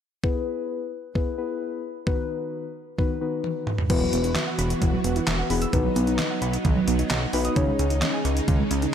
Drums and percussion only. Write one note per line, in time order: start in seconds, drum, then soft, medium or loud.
0.24 kick loud
1.15 kick loud
2.07 kick loud
2.99 kick loud
3.44 high tom medium
3.67 mid tom medium
3.78 floor tom medium
3.90 kick loud
3.90 closed hi-hat medium
3.90 crash loud
4.13 closed hi-hat medium
4.24 closed hi-hat soft
4.35 snare loud
4.35 clap medium
4.35 closed hi-hat medium
4.59 closed hi-hat medium
4.70 closed hi-hat medium
4.82 kick loud
4.82 closed hi-hat medium
5.04 closed hi-hat medium
5.16 closed hi-hat soft
5.27 snare loud
5.27 clap loud
5.27 closed hi-hat medium
5.50 open hi-hat medium
5.62 closed hi-hat medium
5.73 kick loud
5.73 closed hi-hat medium
5.96 closed hi-hat medium
6.07 closed hi-hat soft
6.19 snare loud
6.19 clap medium
6.19 closed hi-hat medium
6.42 closed hi-hat medium
6.53 closed hi-hat medium
6.65 kick loud
6.65 closed hi-hat medium
6.88 closed hi-hat medium
6.99 closed hi-hat medium
7.10 snare loud
7.10 clap loud
7.10 closed hi-hat medium
7.33 open hi-hat medium
7.45 closed hi-hat medium
7.56 kick loud
7.56 closed hi-hat medium
7.79 closed hi-hat medium
7.90 closed hi-hat soft
8.02 snare loud
8.02 clap medium
8.02 closed hi-hat medium
8.25 closed hi-hat medium
8.37 closed hi-hat medium
8.48 kick loud
8.48 closed hi-hat medium
8.71 closed hi-hat medium
8.82 closed hi-hat medium